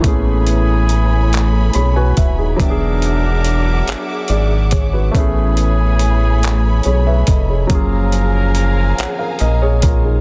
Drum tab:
HH |xxxxxx|xxxxxx|xxxxxx|xxxxxx|
CP |---x--|---x--|---x--|---x--|
BD |o----o|o----o|o----o|o----o|